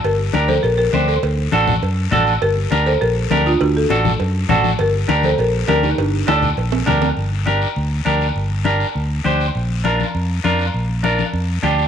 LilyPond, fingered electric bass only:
\new Staff \with { instrumentName = "Fingered electric bass" } { \clef bass \time 4/4 \key g \minor \tempo 4 = 202 g,,4 d,4 bes,,4 d,4 | d,4 a,,4 fis,4 a,,4 | g,,4 d,4 bes,,4 d,4 | d,4 a,,4 fis,4 a,,4 |
g,,4 d,4 bes,,4 d,4 | g,,4 d,4 bes,,4 d,4 | g,,2 d,4 d,4 | g,,2 d,4 d,4 |
bes,,2 f,4 f,4 | bes,,2 f,4 d,4 | }